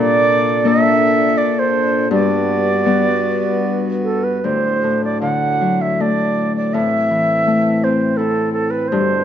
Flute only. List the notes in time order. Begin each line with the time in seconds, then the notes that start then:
Already playing: D5
0.68 E5
1.38 D5
1.59 C5
2.12 D5
4.04 A4
4.24 B4
4.45 C5
5.04 D5
5.22 F#5
5.81 E5
6.01 D5
6.56 D5
6.74 E5
7.84 C5
8.17 A4
8.53 A4
8.71 B4
8.88 C5